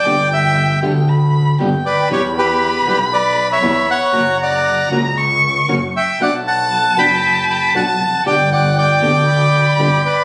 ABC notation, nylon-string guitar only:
X:1
M:4/4
L:1/8
Q:1/4=117
K:Glyd
V:1 name="Nylon-string guitar" clef=bass
[B,,D,G,B,G] z2 [B,,D,G,B,G] z2 [B,,D,G,B,G] z | [B,,E,G,B,E] z2 [B,,E,G,B,E] z2 [B,,E,G,B,E] z | [C,F,^A,CF] z2 [C,F,A,CF] z2 [C,F,A,CF] z | [B,,F,B,DF] z2 [B,,F,B,DF] z2 [B,,F,B,DF] z |
[B,,D,G,B,G] z2 [B,,D,G,B,G] z2 [B,,D,G,B,G] z |]